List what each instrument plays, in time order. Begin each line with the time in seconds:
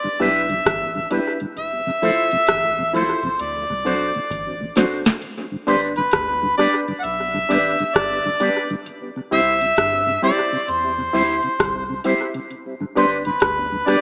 Already playing: harmonica D5
0.04 tonewheel organ G2 D3
0.20 sub bass B1, tonewheel organ G3 B3 E4, reed electric piano D4 E4 G4 B4, clean electric guitar G4 B4 E5, harmonica E5, closed hi-hat
0.49 tonewheel organ G2 D3, closed hi-hat
0.66 sub bass A1, kick, cross-stick, closed hi-hat
0.95 tonewheel organ G2 D3
1.10 tonewheel organ G3 B3 E4, reed electric piano D4 E4 G4 B4, clean electric guitar G4 B4 E5, closed hi-hat
1.40 tonewheel organ G2 D3, closed hi-hat
1.57 sub bass F1, harmonica E5, closed hi-hat
1.87 tonewheel organ F2 C3
2.02 sub bass F1, tonewheel organ F3 A3 E4, reed electric piano E4 F4 A4 C5, clean electric guitar E4 A4 C5, closed hi-hat
2.31 sub bass F1, tonewheel organ F2 C3, closed hi-hat
2.47 sub bass A1, kick, cross-stick, closed hi-hat
2.78 tonewheel organ F2 C3
2.93 tonewheel organ F3 A3 E4, reed electric piano E4 F4 A4 C5, clean electric guitar E4 A4 C5, harmonica C5, closed hi-hat
3.23 tonewheel organ F2 C3, kick, closed hi-hat
3.39 sub bass D2, harmonica D5, closed hi-hat
3.70 sub bass C2, tonewheel organ D2 A2
3.85 sub bass B1, tonewheel organ F#3 C4 D4, reed electric piano D4 F#4 A4 C5, clean electric guitar D4 F#4 C5, closed hi-hat
4.14 tonewheel organ D2 A2, closed hi-hat
4.31 sub bass A1, kick, closed hi-hat
4.60 tonewheel organ D2 A2
4.76 sub bass F#1, tonewheel organ F#3 C4 D4, reed electric piano D4 F#4 A4 C5, clean electric guitar D4 F#4 C5, snare, closed hi-hat
5.05 tonewheel organ D2 A2, snare, closed hi-hat
5.22 closed hi-hat, crash
5.52 tonewheel organ G2 D3
5.67 sub bass G1, tonewheel organ G3 B3 D4, reed electric piano D4 G4 B4 D5, clean electric guitar D4 G4 B4, harmonica C5, closed hi-hat
5.96 tonewheel organ G2 D3, harmonica B4, closed hi-hat
6.11 sub bass D2, kick, cross-stick, closed hi-hat
6.43 tonewheel organ G2 D3
6.58 tonewheel organ G3 B3 D4, reed electric piano D4 G4 B4 D5, clean electric guitar D4 G4 B4, harmonica D5, cross-stick, closed hi-hat
6.88 tonewheel organ G2 D3, closed hi-hat
6.99 harmonica F#5
7.04 sub bass B1, harmonica E5, closed hi-hat
7.34 tonewheel organ G2 D3
7.49 sub bass A1, tonewheel organ G3 B3 D4, reed electric piano D4 G4 B4 D5, clean electric guitar D4 G4 B4, closed hi-hat
7.79 tonewheel organ G2 D3, closed hi-hat
7.95 sub bass G1, harmonica D5, kick, cross-stick, closed hi-hat
8.26 tonewheel organ G2 D3
8.40 tonewheel organ G3 B3 D4, reed electric piano D4 G4 B4 D5, clean electric guitar D4 G4 B4, closed hi-hat
8.70 tonewheel organ G2 D3, closed hi-hat
8.86 closed hi-hat
9.16 tonewheel organ C3
9.31 sub bass C2, tonewheel organ G3 C4 E4, reed electric piano E4 G4 C5 E5, clean electric guitar E4 G4 C5, harmonica E5, closed hi-hat
9.61 tonewheel organ C3, closed hi-hat
9.76 sub bass G2, kick, cross-stick, closed hi-hat
10.06 tonewheel organ C3
10.22 tonewheel organ G3 C4 E4, reed electric piano E4 G4 C5 E5, clean electric guitar E4 G4 C5, harmonica D5, closed hi-hat
10.52 tonewheel organ C3, closed hi-hat
10.68 sub bass E2, harmonica C5, closed hi-hat
10.98 tonewheel organ C3
11.13 sub bass D2, tonewheel organ G3 C4 E4, reed electric piano E4 G4 C5 E5, clean electric guitar E4 G4 C5, closed hi-hat
11.43 tonewheel organ C3, closed hi-hat
11.59 sub bass C2, kick, cross-stick, closed hi-hat
11.89 tonewheel organ C3
12.04 tonewheel organ G3 C4 E4, reed electric piano E4 G4 C5 E5, clean electric guitar E4 G4 C5, closed hi-hat
12.34 tonewheel organ C3, closed hi-hat
12.50 closed hi-hat
12.81 tonewheel organ G2 D3
12.95 sub bass G1, tonewheel organ G3 B3 D4, reed electric piano D4 G4 B4 D5, clean electric guitar D4 G4 B4, harmonica C5, closed hi-hat
13.25 tonewheel organ G2 D3, harmonica B4, closed hi-hat
13.40 sub bass D2, kick, cross-stick, closed hi-hat
13.72 tonewheel organ G2 D3
13.86 tonewheel organ G3 B3 D4, reed electric piano D4 G4 B4 D5, clean electric guitar D4 G4 B4, harmonica D5, cross-stick, closed hi-hat